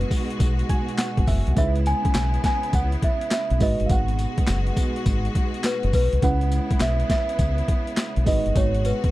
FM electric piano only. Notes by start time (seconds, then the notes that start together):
Already playing: G#3 D#4 F#4 B4
0.70 G#5
0.98 F#5
1.28 E5
1.56 G#3 C#4 D#4 B4
1.64 E4
3.60 G#3 D#4 F#4 B4
6.22 G#3 C#4 E4 B4
8.26 G#3 D#4 F#4 B4